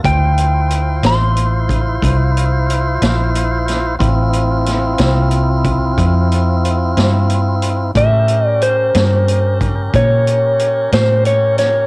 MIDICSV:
0, 0, Header, 1, 5, 480
1, 0, Start_track
1, 0, Key_signature, -1, "minor"
1, 0, Tempo, 658617
1, 39, Time_signature, 12, 3, 24, 8
1, 8649, End_track
2, 0, Start_track
2, 0, Title_t, "Electric slide guitar"
2, 0, Program_c, 0, 29
2, 39, Note_on_c, 0, 79, 92
2, 776, Note_on_c, 0, 84, 99
2, 780, Note_off_c, 0, 79, 0
2, 1458, Note_off_c, 0, 84, 0
2, 5810, Note_on_c, 0, 76, 97
2, 6181, Note_off_c, 0, 76, 0
2, 6181, Note_on_c, 0, 74, 97
2, 6286, Note_on_c, 0, 72, 81
2, 6299, Note_off_c, 0, 74, 0
2, 6975, Note_off_c, 0, 72, 0
2, 7257, Note_on_c, 0, 73, 86
2, 7967, Note_off_c, 0, 73, 0
2, 7970, Note_on_c, 0, 72, 86
2, 8208, Note_off_c, 0, 72, 0
2, 8211, Note_on_c, 0, 73, 80
2, 8437, Note_off_c, 0, 73, 0
2, 8446, Note_on_c, 0, 73, 82
2, 8649, Note_off_c, 0, 73, 0
2, 8649, End_track
3, 0, Start_track
3, 0, Title_t, "Tonewheel organ"
3, 0, Program_c, 1, 16
3, 22, Note_on_c, 1, 65, 62
3, 29, Note_on_c, 1, 64, 67
3, 30, Note_on_c, 1, 72, 63
3, 2880, Note_off_c, 1, 65, 0
3, 2884, Note_off_c, 1, 64, 0
3, 2884, Note_off_c, 1, 72, 0
3, 2908, Note_on_c, 1, 65, 64
3, 2909, Note_on_c, 1, 60, 67
3, 2911, Note_on_c, 1, 64, 60
3, 5765, Note_off_c, 1, 65, 0
3, 5766, Note_off_c, 1, 60, 0
3, 5767, Note_off_c, 1, 64, 0
3, 5802, Note_on_c, 1, 70, 57
3, 5805, Note_on_c, 1, 61, 64
3, 5805, Note_on_c, 1, 67, 60
3, 8649, Note_off_c, 1, 61, 0
3, 8649, Note_off_c, 1, 67, 0
3, 8649, Note_off_c, 1, 70, 0
3, 8649, End_track
4, 0, Start_track
4, 0, Title_t, "Fingered electric bass"
4, 0, Program_c, 2, 33
4, 28, Note_on_c, 2, 38, 83
4, 731, Note_off_c, 2, 38, 0
4, 752, Note_on_c, 2, 33, 86
4, 1453, Note_off_c, 2, 33, 0
4, 1478, Note_on_c, 2, 36, 83
4, 2176, Note_off_c, 2, 36, 0
4, 2199, Note_on_c, 2, 34, 73
4, 2897, Note_off_c, 2, 34, 0
4, 2914, Note_on_c, 2, 33, 79
4, 3614, Note_off_c, 2, 33, 0
4, 3640, Note_on_c, 2, 36, 91
4, 4338, Note_off_c, 2, 36, 0
4, 4354, Note_on_c, 2, 41, 87
4, 5055, Note_off_c, 2, 41, 0
4, 5081, Note_on_c, 2, 43, 75
4, 5779, Note_off_c, 2, 43, 0
4, 5793, Note_on_c, 2, 45, 80
4, 6495, Note_off_c, 2, 45, 0
4, 6522, Note_on_c, 2, 43, 80
4, 7220, Note_off_c, 2, 43, 0
4, 7243, Note_on_c, 2, 46, 89
4, 7941, Note_off_c, 2, 46, 0
4, 7963, Note_on_c, 2, 45, 77
4, 8649, Note_off_c, 2, 45, 0
4, 8649, End_track
5, 0, Start_track
5, 0, Title_t, "Drums"
5, 33, Note_on_c, 9, 36, 107
5, 36, Note_on_c, 9, 42, 80
5, 106, Note_off_c, 9, 36, 0
5, 109, Note_off_c, 9, 42, 0
5, 274, Note_on_c, 9, 42, 54
5, 347, Note_off_c, 9, 42, 0
5, 513, Note_on_c, 9, 42, 59
5, 586, Note_off_c, 9, 42, 0
5, 751, Note_on_c, 9, 42, 74
5, 762, Note_on_c, 9, 38, 112
5, 824, Note_off_c, 9, 42, 0
5, 835, Note_off_c, 9, 38, 0
5, 995, Note_on_c, 9, 42, 59
5, 1068, Note_off_c, 9, 42, 0
5, 1234, Note_on_c, 9, 36, 69
5, 1240, Note_on_c, 9, 42, 55
5, 1306, Note_off_c, 9, 36, 0
5, 1313, Note_off_c, 9, 42, 0
5, 1476, Note_on_c, 9, 36, 76
5, 1483, Note_on_c, 9, 42, 77
5, 1548, Note_off_c, 9, 36, 0
5, 1556, Note_off_c, 9, 42, 0
5, 1726, Note_on_c, 9, 42, 61
5, 1799, Note_off_c, 9, 42, 0
5, 1966, Note_on_c, 9, 42, 56
5, 2039, Note_off_c, 9, 42, 0
5, 2199, Note_on_c, 9, 42, 81
5, 2210, Note_on_c, 9, 38, 87
5, 2272, Note_off_c, 9, 42, 0
5, 2283, Note_off_c, 9, 38, 0
5, 2443, Note_on_c, 9, 42, 65
5, 2515, Note_off_c, 9, 42, 0
5, 2681, Note_on_c, 9, 42, 55
5, 2692, Note_on_c, 9, 38, 30
5, 2754, Note_off_c, 9, 42, 0
5, 2765, Note_off_c, 9, 38, 0
5, 2918, Note_on_c, 9, 36, 103
5, 2923, Note_on_c, 9, 42, 74
5, 2991, Note_off_c, 9, 36, 0
5, 2996, Note_off_c, 9, 42, 0
5, 3157, Note_on_c, 9, 42, 53
5, 3230, Note_off_c, 9, 42, 0
5, 3398, Note_on_c, 9, 42, 58
5, 3409, Note_on_c, 9, 38, 32
5, 3471, Note_off_c, 9, 42, 0
5, 3482, Note_off_c, 9, 38, 0
5, 3631, Note_on_c, 9, 42, 80
5, 3641, Note_on_c, 9, 38, 103
5, 3703, Note_off_c, 9, 42, 0
5, 3714, Note_off_c, 9, 38, 0
5, 3869, Note_on_c, 9, 42, 55
5, 3941, Note_off_c, 9, 42, 0
5, 4113, Note_on_c, 9, 42, 53
5, 4115, Note_on_c, 9, 36, 70
5, 4186, Note_off_c, 9, 42, 0
5, 4188, Note_off_c, 9, 36, 0
5, 4357, Note_on_c, 9, 36, 78
5, 4358, Note_on_c, 9, 42, 74
5, 4429, Note_off_c, 9, 36, 0
5, 4431, Note_off_c, 9, 42, 0
5, 4603, Note_on_c, 9, 42, 51
5, 4676, Note_off_c, 9, 42, 0
5, 4844, Note_on_c, 9, 42, 53
5, 4917, Note_off_c, 9, 42, 0
5, 5079, Note_on_c, 9, 42, 69
5, 5090, Note_on_c, 9, 38, 86
5, 5152, Note_off_c, 9, 42, 0
5, 5163, Note_off_c, 9, 38, 0
5, 5318, Note_on_c, 9, 42, 59
5, 5390, Note_off_c, 9, 42, 0
5, 5554, Note_on_c, 9, 42, 56
5, 5626, Note_off_c, 9, 42, 0
5, 5794, Note_on_c, 9, 42, 82
5, 5796, Note_on_c, 9, 36, 100
5, 5867, Note_off_c, 9, 42, 0
5, 5869, Note_off_c, 9, 36, 0
5, 6035, Note_on_c, 9, 42, 59
5, 6108, Note_off_c, 9, 42, 0
5, 6279, Note_on_c, 9, 42, 63
5, 6352, Note_off_c, 9, 42, 0
5, 6519, Note_on_c, 9, 42, 78
5, 6530, Note_on_c, 9, 38, 102
5, 6592, Note_off_c, 9, 42, 0
5, 6603, Note_off_c, 9, 38, 0
5, 6764, Note_on_c, 9, 42, 60
5, 6837, Note_off_c, 9, 42, 0
5, 7002, Note_on_c, 9, 36, 70
5, 7003, Note_on_c, 9, 42, 58
5, 7075, Note_off_c, 9, 36, 0
5, 7076, Note_off_c, 9, 42, 0
5, 7241, Note_on_c, 9, 42, 78
5, 7242, Note_on_c, 9, 36, 83
5, 7314, Note_off_c, 9, 42, 0
5, 7315, Note_off_c, 9, 36, 0
5, 7485, Note_on_c, 9, 42, 54
5, 7558, Note_off_c, 9, 42, 0
5, 7721, Note_on_c, 9, 42, 52
5, 7794, Note_off_c, 9, 42, 0
5, 7961, Note_on_c, 9, 42, 71
5, 7972, Note_on_c, 9, 38, 88
5, 8034, Note_off_c, 9, 42, 0
5, 8045, Note_off_c, 9, 38, 0
5, 8200, Note_on_c, 9, 42, 57
5, 8273, Note_off_c, 9, 42, 0
5, 8438, Note_on_c, 9, 42, 56
5, 8449, Note_on_c, 9, 38, 32
5, 8511, Note_off_c, 9, 42, 0
5, 8522, Note_off_c, 9, 38, 0
5, 8649, End_track
0, 0, End_of_file